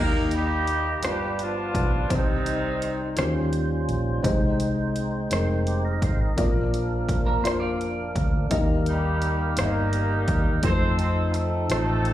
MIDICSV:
0, 0, Header, 1, 7, 480
1, 0, Start_track
1, 0, Key_signature, -3, "major"
1, 0, Tempo, 711744
1, 1418, Time_signature, 6, 3, 24, 8
1, 8182, End_track
2, 0, Start_track
2, 0, Title_t, "Clean electric guitar"
2, 0, Program_c, 0, 27
2, 4899, Note_on_c, 0, 70, 54
2, 4904, Note_on_c, 0, 62, 48
2, 5013, Note_off_c, 0, 70, 0
2, 5015, Note_off_c, 0, 62, 0
2, 5017, Note_on_c, 0, 72, 68
2, 5122, Note_off_c, 0, 72, 0
2, 5125, Note_on_c, 0, 74, 60
2, 5129, Note_on_c, 0, 65, 49
2, 5704, Note_off_c, 0, 74, 0
2, 5706, Note_off_c, 0, 65, 0
2, 8182, End_track
3, 0, Start_track
3, 0, Title_t, "Tonewheel organ"
3, 0, Program_c, 1, 16
3, 0, Note_on_c, 1, 58, 49
3, 0, Note_on_c, 1, 63, 45
3, 0, Note_on_c, 1, 67, 46
3, 0, Note_on_c, 1, 75, 54
3, 695, Note_on_c, 1, 71, 55
3, 699, Note_off_c, 1, 75, 0
3, 699, Note_on_c, 1, 65, 47
3, 700, Note_off_c, 1, 58, 0
3, 700, Note_off_c, 1, 67, 0
3, 700, Note_on_c, 1, 62, 45
3, 701, Note_on_c, 1, 55, 50
3, 702, Note_off_c, 1, 63, 0
3, 1400, Note_off_c, 1, 55, 0
3, 1406, Note_on_c, 1, 72, 53
3, 1408, Note_on_c, 1, 55, 50
3, 1409, Note_on_c, 1, 60, 48
3, 1409, Note_on_c, 1, 63, 45
3, 1418, Note_off_c, 1, 71, 0
3, 1419, Note_off_c, 1, 65, 0
3, 1420, Note_off_c, 1, 62, 0
3, 2132, Note_off_c, 1, 55, 0
3, 2133, Note_off_c, 1, 72, 0
3, 2135, Note_off_c, 1, 60, 0
3, 2135, Note_off_c, 1, 63, 0
3, 2135, Note_on_c, 1, 61, 56
3, 2137, Note_on_c, 1, 70, 56
3, 2138, Note_on_c, 1, 65, 59
3, 2140, Note_on_c, 1, 55, 61
3, 2182, Note_off_c, 1, 70, 0
3, 2184, Note_on_c, 1, 72, 67
3, 2842, Note_off_c, 1, 72, 0
3, 2850, Note_on_c, 1, 60, 53
3, 2850, Note_on_c, 1, 72, 69
3, 2853, Note_on_c, 1, 63, 56
3, 2855, Note_on_c, 1, 56, 59
3, 2858, Note_off_c, 1, 61, 0
3, 2859, Note_off_c, 1, 65, 0
3, 2860, Note_off_c, 1, 55, 0
3, 3796, Note_off_c, 1, 72, 0
3, 3823, Note_on_c, 1, 72, 49
3, 3827, Note_on_c, 1, 67, 41
3, 3936, Note_off_c, 1, 72, 0
3, 3938, Note_off_c, 1, 67, 0
3, 3943, Note_on_c, 1, 75, 56
3, 3946, Note_on_c, 1, 70, 47
3, 4056, Note_off_c, 1, 75, 0
3, 4057, Note_off_c, 1, 70, 0
3, 4074, Note_on_c, 1, 77, 51
3, 4076, Note_on_c, 1, 72, 44
3, 4181, Note_off_c, 1, 77, 0
3, 4182, Note_off_c, 1, 72, 0
3, 4185, Note_on_c, 1, 75, 45
3, 4194, Note_on_c, 1, 70, 43
3, 4268, Note_off_c, 1, 60, 0
3, 4270, Note_off_c, 1, 63, 0
3, 4271, Note_off_c, 1, 56, 0
3, 4290, Note_off_c, 1, 70, 0
3, 4296, Note_on_c, 1, 53, 58
3, 4297, Note_on_c, 1, 60, 41
3, 4298, Note_on_c, 1, 70, 63
3, 4301, Note_on_c, 1, 58, 52
3, 4339, Note_on_c, 1, 62, 53
3, 4342, Note_off_c, 1, 60, 0
3, 4411, Note_off_c, 1, 75, 0
3, 5709, Note_off_c, 1, 53, 0
3, 5710, Note_off_c, 1, 70, 0
3, 5711, Note_off_c, 1, 58, 0
3, 5730, Note_off_c, 1, 62, 0
3, 5740, Note_on_c, 1, 58, 52
3, 5744, Note_on_c, 1, 70, 63
3, 5745, Note_on_c, 1, 55, 60
3, 5747, Note_on_c, 1, 63, 55
3, 7148, Note_off_c, 1, 58, 0
3, 7150, Note_off_c, 1, 55, 0
3, 7150, Note_off_c, 1, 70, 0
3, 7151, Note_off_c, 1, 63, 0
3, 7175, Note_on_c, 1, 53, 54
3, 7175, Note_on_c, 1, 63, 45
3, 7176, Note_on_c, 1, 60, 46
3, 7180, Note_on_c, 1, 69, 58
3, 8182, Note_off_c, 1, 53, 0
3, 8182, Note_off_c, 1, 60, 0
3, 8182, Note_off_c, 1, 63, 0
3, 8182, Note_off_c, 1, 69, 0
3, 8182, End_track
4, 0, Start_track
4, 0, Title_t, "Upright piano"
4, 0, Program_c, 2, 0
4, 0, Note_on_c, 2, 51, 49
4, 0, Note_on_c, 2, 58, 62
4, 0, Note_on_c, 2, 63, 59
4, 0, Note_on_c, 2, 67, 59
4, 0, Note_on_c, 2, 74, 47
4, 0, Note_on_c, 2, 75, 68
4, 81, Note_off_c, 2, 74, 0
4, 96, Control_c, 2, 64, 127
4, 655, Note_off_c, 2, 58, 0
4, 659, Note_off_c, 2, 63, 0
4, 661, Note_off_c, 2, 67, 0
4, 664, Note_off_c, 2, 75, 0
4, 671, Note_off_c, 2, 51, 0
4, 688, Note_on_c, 2, 55, 50
4, 692, Note_on_c, 2, 62, 43
4, 693, Note_on_c, 2, 43, 46
4, 698, Note_on_c, 2, 65, 45
4, 703, Control_c, 2, 64, 0
4, 704, Note_on_c, 2, 71, 57
4, 804, Control_c, 2, 64, 127
4, 1377, Note_off_c, 2, 55, 0
4, 1379, Note_off_c, 2, 62, 0
4, 1382, Note_off_c, 2, 65, 0
4, 1385, Note_off_c, 2, 71, 0
4, 1390, Note_off_c, 2, 43, 0
4, 1410, Note_on_c, 2, 55, 61
4, 1414, Note_on_c, 2, 60, 61
4, 1417, Note_on_c, 2, 48, 49
4, 1422, Note_on_c, 2, 63, 60
4, 1426, Control_c, 2, 64, 0
4, 1426, Note_on_c, 2, 72, 68
4, 1563, Control_c, 2, 64, 127
4, 2099, Note_off_c, 2, 55, 0
4, 2101, Note_off_c, 2, 60, 0
4, 2105, Note_off_c, 2, 63, 0
4, 2107, Note_off_c, 2, 72, 0
4, 2112, Note_off_c, 2, 48, 0
4, 2133, Note_on_c, 2, 54, 48
4, 2137, Note_on_c, 2, 61, 55
4, 2143, Note_on_c, 2, 51, 60
4, 2145, Note_on_c, 2, 65, 54
4, 2146, Control_c, 2, 64, 0
4, 2152, Note_on_c, 2, 72, 66
4, 2177, Note_on_c, 2, 55, 64
4, 2180, Note_off_c, 2, 54, 0
4, 2276, Control_c, 2, 64, 127
4, 2822, Note_off_c, 2, 61, 0
4, 2827, Note_off_c, 2, 65, 0
4, 2830, Note_off_c, 2, 72, 0
4, 2835, Note_off_c, 2, 51, 0
4, 2842, Note_off_c, 2, 55, 0
4, 2853, Note_on_c, 2, 56, 77
4, 2855, Note_on_c, 2, 60, 72
4, 2860, Note_on_c, 2, 48, 61
4, 2862, Note_on_c, 2, 63, 71
4, 2868, Control_c, 2, 64, 0
4, 2870, Note_on_c, 2, 72, 87
4, 3001, Control_c, 2, 64, 127
4, 3540, Note_off_c, 2, 56, 0
4, 3541, Note_off_c, 2, 60, 0
4, 3545, Note_off_c, 2, 63, 0
4, 3549, Note_off_c, 2, 72, 0
4, 3553, Note_off_c, 2, 48, 0
4, 3573, Note_on_c, 2, 56, 62
4, 3582, Note_on_c, 2, 60, 58
4, 3585, Note_on_c, 2, 63, 57
4, 3588, Note_on_c, 2, 70, 66
4, 4260, Note_off_c, 2, 56, 0
4, 4264, Note_off_c, 2, 60, 0
4, 4266, Note_off_c, 2, 63, 0
4, 4267, Note_off_c, 2, 70, 0
4, 4290, Note_on_c, 2, 58, 77
4, 4294, Note_on_c, 2, 62, 72
4, 4300, Note_on_c, 2, 46, 57
4, 4301, Note_on_c, 2, 65, 68
4, 4308, Note_on_c, 2, 74, 83
4, 4309, Control_c, 2, 64, 0
4, 4436, Control_c, 2, 64, 127
4, 4978, Note_off_c, 2, 58, 0
4, 4980, Note_off_c, 2, 62, 0
4, 4983, Note_off_c, 2, 65, 0
4, 4987, Note_off_c, 2, 74, 0
4, 4992, Note_off_c, 2, 46, 0
4, 5007, Note_on_c, 2, 58, 62
4, 5012, Note_on_c, 2, 62, 56
4, 5020, Note_on_c, 2, 65, 58
4, 5024, Note_on_c, 2, 74, 70
4, 5696, Note_off_c, 2, 58, 0
4, 5698, Note_off_c, 2, 62, 0
4, 5702, Note_off_c, 2, 65, 0
4, 5704, Note_off_c, 2, 74, 0
4, 5728, Note_on_c, 2, 58, 80
4, 5736, Note_on_c, 2, 63, 69
4, 5738, Note_on_c, 2, 51, 59
4, 5741, Note_on_c, 2, 67, 66
4, 5745, Note_on_c, 2, 75, 85
4, 5747, Control_c, 2, 64, 0
4, 5862, Control_c, 2, 64, 127
4, 6415, Note_off_c, 2, 58, 0
4, 6419, Note_off_c, 2, 63, 0
4, 6421, Note_off_c, 2, 67, 0
4, 6423, Note_off_c, 2, 75, 0
4, 6429, Note_off_c, 2, 51, 0
4, 6447, Note_on_c, 2, 58, 53
4, 6452, Note_on_c, 2, 63, 45
4, 6459, Note_on_c, 2, 67, 45
4, 6464, Note_on_c, 2, 74, 44
4, 6504, Note_off_c, 2, 74, 0
4, 6509, Note_on_c, 2, 75, 58
4, 7133, Note_off_c, 2, 58, 0
4, 7135, Note_off_c, 2, 63, 0
4, 7139, Note_off_c, 2, 67, 0
4, 7158, Note_on_c, 2, 57, 68
4, 7163, Note_on_c, 2, 63, 60
4, 7164, Note_off_c, 2, 75, 0
4, 7166, Note_on_c, 2, 65, 61
4, 7176, Note_on_c, 2, 71, 53
4, 7182, Control_c, 2, 64, 0
4, 7219, Note_off_c, 2, 71, 0
4, 7220, Note_on_c, 2, 72, 74
4, 7315, Control_c, 2, 64, 127
4, 7847, Note_off_c, 2, 57, 0
4, 7849, Note_off_c, 2, 63, 0
4, 7851, Note_off_c, 2, 65, 0
4, 7877, Note_off_c, 2, 72, 0
4, 7882, Note_on_c, 2, 57, 54
4, 7890, Note_on_c, 2, 63, 51
4, 7891, Note_on_c, 2, 65, 50
4, 7898, Note_on_c, 2, 75, 59
4, 8182, Note_off_c, 2, 57, 0
4, 8182, Note_off_c, 2, 63, 0
4, 8182, Note_off_c, 2, 65, 0
4, 8182, Note_off_c, 2, 75, 0
4, 8182, End_track
5, 0, Start_track
5, 0, Title_t, "Horn section"
5, 0, Program_c, 3, 61
5, 0, Note_on_c, 3, 58, 77
5, 0, Note_on_c, 3, 63, 61
5, 0, Note_on_c, 3, 67, 65
5, 0, Note_on_c, 3, 70, 83
5, 205, Note_off_c, 3, 58, 0
5, 205, Note_off_c, 3, 70, 0
5, 225, Note_off_c, 3, 67, 0
5, 228, Note_off_c, 3, 63, 0
5, 233, Note_on_c, 3, 55, 77
5, 233, Note_on_c, 3, 67, 84
5, 236, Note_on_c, 3, 58, 56
5, 236, Note_on_c, 3, 63, 62
5, 678, Note_off_c, 3, 55, 0
5, 678, Note_off_c, 3, 67, 0
5, 680, Note_off_c, 3, 58, 0
5, 680, Note_off_c, 3, 63, 0
5, 722, Note_on_c, 3, 55, 67
5, 722, Note_on_c, 3, 67, 73
5, 727, Note_on_c, 3, 59, 53
5, 729, Note_on_c, 3, 62, 50
5, 934, Note_off_c, 3, 55, 0
5, 934, Note_off_c, 3, 67, 0
5, 950, Note_off_c, 3, 59, 0
5, 951, Note_off_c, 3, 62, 0
5, 959, Note_on_c, 3, 59, 55
5, 959, Note_on_c, 3, 62, 56
5, 962, Note_on_c, 3, 53, 69
5, 962, Note_on_c, 3, 65, 76
5, 1402, Note_off_c, 3, 59, 0
5, 1402, Note_off_c, 3, 62, 0
5, 1430, Note_off_c, 3, 53, 0
5, 1430, Note_off_c, 3, 65, 0
5, 1436, Note_on_c, 3, 55, 53
5, 1440, Note_on_c, 3, 51, 64
5, 1440, Note_on_c, 3, 63, 69
5, 1441, Note_on_c, 3, 60, 55
5, 2122, Note_off_c, 3, 55, 0
5, 2124, Note_off_c, 3, 60, 0
5, 2150, Note_off_c, 3, 51, 0
5, 2150, Note_off_c, 3, 63, 0
5, 5994, Note_on_c, 3, 63, 57
5, 5998, Note_on_c, 3, 55, 66
5, 5998, Note_on_c, 3, 67, 72
5, 6000, Note_on_c, 3, 58, 55
5, 6439, Note_off_c, 3, 55, 0
5, 6439, Note_off_c, 3, 67, 0
5, 6470, Note_off_c, 3, 63, 0
5, 6477, Note_off_c, 3, 58, 0
5, 6477, Note_on_c, 3, 58, 75
5, 6477, Note_on_c, 3, 70, 82
5, 6478, Note_on_c, 3, 63, 66
5, 6480, Note_on_c, 3, 67, 64
5, 6945, Note_off_c, 3, 58, 0
5, 6945, Note_off_c, 3, 70, 0
5, 7158, Note_off_c, 3, 63, 0
5, 7159, Note_off_c, 3, 67, 0
5, 7184, Note_on_c, 3, 60, 86
5, 7184, Note_on_c, 3, 72, 93
5, 7190, Note_on_c, 3, 69, 67
5, 7196, Note_on_c, 3, 63, 73
5, 7401, Note_off_c, 3, 60, 0
5, 7401, Note_off_c, 3, 72, 0
5, 7418, Note_on_c, 3, 60, 75
5, 7418, Note_on_c, 3, 72, 82
5, 7632, Note_off_c, 3, 69, 0
5, 7638, Note_off_c, 3, 60, 0
5, 7638, Note_off_c, 3, 72, 0
5, 7640, Note_on_c, 3, 57, 67
5, 7640, Note_on_c, 3, 69, 73
5, 7875, Note_off_c, 3, 63, 0
5, 7880, Note_off_c, 3, 57, 0
5, 7880, Note_off_c, 3, 69, 0
5, 7889, Note_on_c, 3, 57, 66
5, 7889, Note_on_c, 3, 69, 72
5, 7898, Note_on_c, 3, 60, 53
5, 7900, Note_on_c, 3, 63, 48
5, 8182, Note_off_c, 3, 57, 0
5, 8182, Note_off_c, 3, 60, 0
5, 8182, Note_off_c, 3, 63, 0
5, 8182, Note_off_c, 3, 69, 0
5, 8182, End_track
6, 0, Start_track
6, 0, Title_t, "Fingered electric bass"
6, 0, Program_c, 4, 33
6, 0, Note_on_c, 4, 39, 76
6, 692, Note_off_c, 4, 39, 0
6, 692, Note_on_c, 4, 31, 80
6, 1148, Note_off_c, 4, 31, 0
6, 1177, Note_on_c, 4, 35, 67
6, 1398, Note_off_c, 4, 35, 0
6, 1419, Note_on_c, 4, 36, 80
6, 2113, Note_off_c, 4, 36, 0
6, 2142, Note_on_c, 4, 39, 81
6, 2594, Note_off_c, 4, 39, 0
6, 2621, Note_on_c, 4, 34, 64
6, 2841, Note_off_c, 4, 34, 0
6, 2859, Note_on_c, 4, 36, 78
6, 3553, Note_off_c, 4, 36, 0
6, 3583, Note_on_c, 4, 29, 74
6, 4034, Note_off_c, 4, 29, 0
6, 4061, Note_on_c, 4, 32, 64
6, 4281, Note_off_c, 4, 32, 0
6, 4300, Note_on_c, 4, 34, 77
6, 5023, Note_off_c, 4, 34, 0
6, 5023, Note_on_c, 4, 29, 77
6, 5473, Note_off_c, 4, 29, 0
6, 5500, Note_on_c, 4, 38, 64
6, 5720, Note_off_c, 4, 38, 0
6, 5739, Note_on_c, 4, 39, 76
6, 6429, Note_off_c, 4, 39, 0
6, 6457, Note_on_c, 4, 31, 70
6, 6908, Note_off_c, 4, 31, 0
6, 6931, Note_on_c, 4, 39, 75
6, 7153, Note_off_c, 4, 39, 0
6, 7172, Note_on_c, 4, 41, 76
6, 7863, Note_off_c, 4, 41, 0
6, 7889, Note_on_c, 4, 33, 78
6, 8182, Note_off_c, 4, 33, 0
6, 8182, End_track
7, 0, Start_track
7, 0, Title_t, "Drums"
7, 211, Note_on_c, 9, 42, 45
7, 278, Note_off_c, 9, 42, 0
7, 455, Note_on_c, 9, 42, 40
7, 522, Note_off_c, 9, 42, 0
7, 692, Note_on_c, 9, 42, 63
7, 705, Note_on_c, 9, 37, 85
7, 759, Note_off_c, 9, 42, 0
7, 772, Note_off_c, 9, 37, 0
7, 937, Note_on_c, 9, 42, 39
7, 1005, Note_off_c, 9, 42, 0
7, 1178, Note_on_c, 9, 36, 62
7, 1180, Note_on_c, 9, 42, 39
7, 1245, Note_off_c, 9, 36, 0
7, 1247, Note_off_c, 9, 42, 0
7, 1418, Note_on_c, 9, 36, 83
7, 1419, Note_on_c, 9, 42, 68
7, 1486, Note_off_c, 9, 36, 0
7, 1487, Note_off_c, 9, 42, 0
7, 1661, Note_on_c, 9, 42, 45
7, 1728, Note_off_c, 9, 42, 0
7, 1902, Note_on_c, 9, 42, 41
7, 1914, Note_on_c, 9, 37, 26
7, 1970, Note_off_c, 9, 42, 0
7, 1982, Note_off_c, 9, 37, 0
7, 2135, Note_on_c, 9, 42, 64
7, 2148, Note_on_c, 9, 37, 87
7, 2203, Note_off_c, 9, 42, 0
7, 2216, Note_off_c, 9, 37, 0
7, 2379, Note_on_c, 9, 42, 39
7, 2446, Note_off_c, 9, 42, 0
7, 2621, Note_on_c, 9, 42, 38
7, 2689, Note_off_c, 9, 42, 0
7, 2861, Note_on_c, 9, 36, 84
7, 2863, Note_on_c, 9, 42, 70
7, 2928, Note_off_c, 9, 36, 0
7, 2930, Note_off_c, 9, 42, 0
7, 3101, Note_on_c, 9, 42, 46
7, 3168, Note_off_c, 9, 42, 0
7, 3343, Note_on_c, 9, 42, 41
7, 3411, Note_off_c, 9, 42, 0
7, 3580, Note_on_c, 9, 42, 65
7, 3593, Note_on_c, 9, 37, 91
7, 3647, Note_off_c, 9, 42, 0
7, 3660, Note_off_c, 9, 37, 0
7, 3822, Note_on_c, 9, 42, 39
7, 3890, Note_off_c, 9, 42, 0
7, 4061, Note_on_c, 9, 36, 66
7, 4063, Note_on_c, 9, 42, 40
7, 4128, Note_off_c, 9, 36, 0
7, 4130, Note_off_c, 9, 42, 0
7, 4301, Note_on_c, 9, 36, 83
7, 4301, Note_on_c, 9, 42, 68
7, 4368, Note_off_c, 9, 36, 0
7, 4368, Note_off_c, 9, 42, 0
7, 4544, Note_on_c, 9, 42, 43
7, 4612, Note_off_c, 9, 42, 0
7, 4779, Note_on_c, 9, 36, 65
7, 4782, Note_on_c, 9, 42, 42
7, 4846, Note_off_c, 9, 36, 0
7, 4850, Note_off_c, 9, 42, 0
7, 5025, Note_on_c, 9, 42, 66
7, 5038, Note_on_c, 9, 37, 82
7, 5093, Note_off_c, 9, 42, 0
7, 5106, Note_off_c, 9, 37, 0
7, 5266, Note_on_c, 9, 42, 37
7, 5334, Note_off_c, 9, 42, 0
7, 5500, Note_on_c, 9, 36, 62
7, 5502, Note_on_c, 9, 42, 39
7, 5567, Note_off_c, 9, 36, 0
7, 5569, Note_off_c, 9, 42, 0
7, 5738, Note_on_c, 9, 36, 87
7, 5738, Note_on_c, 9, 42, 68
7, 5805, Note_off_c, 9, 42, 0
7, 5806, Note_off_c, 9, 36, 0
7, 5977, Note_on_c, 9, 42, 46
7, 6045, Note_off_c, 9, 42, 0
7, 6216, Note_on_c, 9, 42, 43
7, 6283, Note_off_c, 9, 42, 0
7, 6452, Note_on_c, 9, 42, 67
7, 6465, Note_on_c, 9, 37, 88
7, 6520, Note_off_c, 9, 42, 0
7, 6532, Note_off_c, 9, 37, 0
7, 6696, Note_on_c, 9, 42, 41
7, 6763, Note_off_c, 9, 42, 0
7, 6931, Note_on_c, 9, 42, 41
7, 6933, Note_on_c, 9, 36, 66
7, 6998, Note_off_c, 9, 42, 0
7, 7001, Note_off_c, 9, 36, 0
7, 7167, Note_on_c, 9, 42, 69
7, 7172, Note_on_c, 9, 36, 79
7, 7235, Note_off_c, 9, 42, 0
7, 7239, Note_off_c, 9, 36, 0
7, 7410, Note_on_c, 9, 42, 47
7, 7477, Note_off_c, 9, 42, 0
7, 7647, Note_on_c, 9, 42, 43
7, 7659, Note_on_c, 9, 37, 29
7, 7715, Note_off_c, 9, 42, 0
7, 7727, Note_off_c, 9, 37, 0
7, 7888, Note_on_c, 9, 42, 67
7, 7901, Note_on_c, 9, 37, 86
7, 7955, Note_off_c, 9, 42, 0
7, 7968, Note_off_c, 9, 37, 0
7, 8127, Note_on_c, 9, 42, 40
7, 8182, Note_off_c, 9, 42, 0
7, 8182, End_track
0, 0, End_of_file